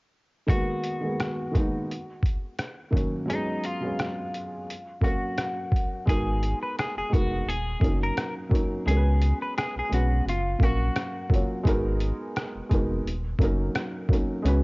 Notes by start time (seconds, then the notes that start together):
0.47 D#3 G#3 A#3 B3 F#4, kick, closed hi-hat
0.52 F#4
0.84 closed hi-hat
1.01 D#3 G#3 A#3 B3
1.06 G#4
1.20 cross-stick, closed hi-hat
1.51 D#3 G#3 A#3, kick, closed hi-hat
1.55 B3 D#4
1.91 closed hi-hat
2.22 kick, closed hi-hat
2.58 cross-stick, closed hi-hat
2.91 D#3 F#3 A#3 C#4, kick
2.96 F#4, closed hi-hat
3.25 F#3 G#3 B3 C#4
3.30 D#4 G#4, closed hi-hat
3.64 F4, closed hi-hat
3.81 F#3 G#3 B3
3.85 C#4 G#4
3.99 cross-stick, closed hi-hat
4.34 closed hi-hat
4.70 closed hi-hat
5.01 F#3 A#3 C#4 F#4 F5, kick, closed hi-hat
5.06 A#4
5.38 cross-stick, closed hi-hat
5.72 kick
5.76 closed hi-hat
6.06 G#1 G#3 B3 D#4 F#4 G#4, kick, closed hi-hat
6.10 A#4
6.43 closed hi-hat
6.63 B4
6.79 G#4, cross-stick, closed hi-hat
6.97 F1 G#4
7.10 F1 G#3 B3 D#4 F#4, kick
7.14 A#4, closed hi-hat
7.47 D#1 G#4, closed hi-hat
7.80 F#1 F#3 A#3 C#4, kick
7.84 D#4 A#4, closed hi-hat
8.03 A#4
8.17 cross-stick, closed hi-hat
8.49 F#3 A#3 C#4 D#4, kick
8.54 A#4, closed hi-hat
8.86 C#2 G#3 B3 C#4 F#4 G#4, closed hi-hat
8.90 A#4
8.97 B4
9.22 closed hi-hat
9.42 B4
9.58 G#4, cross-stick, closed hi-hat
9.76 B1 G#4
9.89 B1 G#3 B3 C#4 F#4, closed hi-hat
9.94 F#4 B4
10.26 F#1 F4, closed hi-hat
10.58 A#1 F#3 A#3 C#4, kick
10.63 F#4 A#4 F5, closed hi-hat
10.96 cross-stick, closed hi-hat
11.30 F#1 F#3 A#3 C#4 F4, kick
11.34 C#5, closed hi-hat
11.64 G#1 G#3 B3 D#4 F#4, kick, closed hi-hat
11.69 A#4
12.00 closed hi-hat
12.36 cross-stick, closed hi-hat
12.55 F1
12.69 F1 G#3 B3 D#4 F#4, kick, closed hi-hat
12.74 A#4
13.05 D#1, closed hi-hat
13.39 F#1 F#3 A#3 C#4 D#4, kick, closed hi-hat
13.43 A#4
13.75 cross-stick, closed hi-hat
14.09 F#3 A#3 C#4 D#4, kick
14.13 A#4, closed hi-hat
14.42 C#2 G#3 B3 C#4 F#4, closed hi-hat
14.47 B4